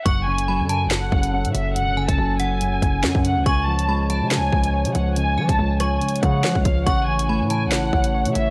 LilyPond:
<<
  \new Staff \with { instrumentName = "Synth bell" } { \time 4/4 \key fis \minor \tempo 4 = 141 cis'''4 b''8 a''4. r4 | r8 gis''4 fis''2~ fis''8 | cis'''4 b''8 a''4. r4 | r8 gis''4 cis'''4. r4 |
cis'''4 b''8 a''4. r4 | }
  \new Staff \with { instrumentName = "Violin section" } { \time 4/4 \key fis \minor fis''8 gis''4 gis''8 fis''4. e''8 | fis''8. a''8. gis''2 fis''8 | gis''8 a''4 a''8 gis''4. fis''8 | gis''8. a''8. gis''4 fis''4 eis''8 |
fis''8 gis''4 gis''8 fis''4. e''8 | }
  \new Staff \with { instrumentName = "Analog synth pad" } { \time 4/4 \key fis \minor <fis cis' a'>1~ | <fis cis' a'>1 | <eis gis cis''>1~ | <eis gis cis''>1 |
<a e' cis''>1 | }
  \new Staff \with { instrumentName = "Synth keys" } { \clef bass \time 4/4 \key fis \minor fis,8 cis8 fis8 cis8 fis,8 cis8 cis'8 cis8 | fis,8 cis8 fis8 cis8 fis,8 cis8 cis'8 cis8 | cis8 eis8 gis8 eis8 cis8 eis8 cis''8 eis8 | cis8 eis8 gis8 eis8 cis8 eis8 cis''8 eis8 |
cis8 e8 a8 e8 cis8 e8 cis''8 e8 | }
  \new Staff \with { instrumentName = "808-style bass" } { \clef bass \time 4/4 \key fis \minor fis,,4~ fis,,16 fis,8~ fis,32 fis,,8~ fis,,32 fis,,8. a,16 fis,,8 | e,,16. fis,,16. fis,,16 fis,,4. fis,,8 fis,16 fis,8 cis,16 | cis,4.~ cis,16 cis16. cis,16. cis,8. cis16 cis,8~ | cis,8 eis16 cis,16 cis,4 r8 cis8 eis16 cis,16 cis,8 |
a,,4~ a,,16 a,8~ a,32 a,,8~ a,,32 a,,8. cis16 a,,8 | }
  \new DrumStaff \with { instrumentName = "Drums" } \drummode { \time 4/4 <hh bd>8. hh16 r8 hh8 <hc hh sn>8 bd16 hh16 r16 hh16 hh8 | hh8. <hh bd>16 r8 hh8 hh8 <hh bd>8 <hc sn>16 bd16 hh8 | <hh bd>8. hh16 r8 hh8 <hc hh sn>8 bd16 hh16 r16 hh16 hh8 | hh8. <hh bd>16 r8 <hh ss>8 \tuplet 3/2 { hh16 hh16 hh16 <hh bd>16 r16 r16 } <hc sn>16 bd16 <hh bd>8 |
<hh bd>8. hh16 r8 hh8 <hc hh sn>8 bd16 hh16 r16 hh16 hh8 | }
>>